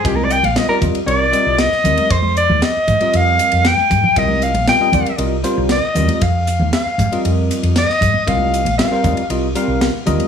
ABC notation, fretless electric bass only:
X:1
M:4/4
L:1/16
Q:1/4=117
K:Cm
V:1 name="Fretless electric bass" clef=bass
C,,3 B,,, z2 E,, z C,,2 z C,,2 z E,, z | F,,3 E,, z2 A,, z F,,2 z F,,2 z A,, z | C,,3 B,,, z2 E,, z C,,2 z C,,2 z =E,, z | F,,3 E,, z2 A,, z F,,2 z F,,2 z A,, z |
C,,3 B,,, z2 E,, z C,,2 z C,,2 z E,, z |]